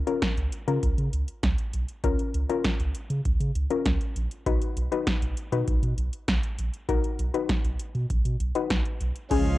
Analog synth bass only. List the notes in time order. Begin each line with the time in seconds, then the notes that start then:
0.37 C#2
0.68 C#3
0.83 C#2
0.98 C#3
1.13 C#2
1.43 C#2
1.74 B1
2.04 C#2
2.34 C#2
2.80 C#2
3.10 C#3
3.25 C#2
3.40 C#3
3.55 C#2
3.86 C#2
4.16 A#1
4.46 B1
4.77 B1
5.22 B1
5.52 B2
5.68 B1
5.83 B2
5.98 B1
6.28 B1
6.58 A#1
6.89 B1
7.19 B1
7.64 B1
7.95 B2
8.10 B1
8.25 B2
8.40 B1
8.70 B1
9.01 B1
9.31 C#2
9.46 C#2